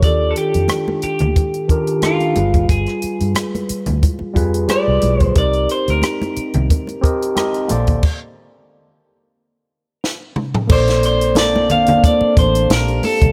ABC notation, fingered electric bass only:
X:1
M:4/4
L:1/16
Q:"Swing 16ths" 1/4=90
K:Bb
V:1 name="Fingered electric bass" clef=bass
E,,2 z F,, z3 D,, z6 G,,,2 | G,,, z2 G,, z3 D,, z2 F,,2 z C,, =B,,,2 | C,,2 z D,, z3 C,, z6 B,,,2 | z16 |
B,,,8 z2 A,,,2 B,,,2 z C,, |]